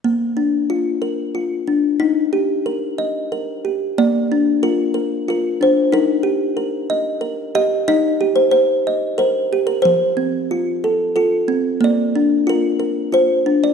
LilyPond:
\new Staff \with { instrumentName = "Kalimba" } { \time 3/4 \key bes \major \tempo 4 = 92 << { r2. | r2. | d''4 bes'4 bes'8 c''8 | bes'2 r8 ees''8 |
ees''8. c''16 c''4 bes'8. bes'16 | c''2 a'4 | d''4 bes'4 c''8. d''16 | } \\ { bes8 d'8 f'8 bes'8 f'8 d'8 | ees'8 g'8 bes'8 ees''8 bes'8 g'8 | bes8 d'8 f'8 bes'8 f'8 d'8 | ees'8 g'8 bes'8 ees''8 bes'8 g'8 |
ees'8 g'4 ees''8 c''8 g'8 | f8 c'8 f'8 a'8 f'8 c'8 | bes8 d'8 f'8 bes'8 f'8 d'8 | } >> }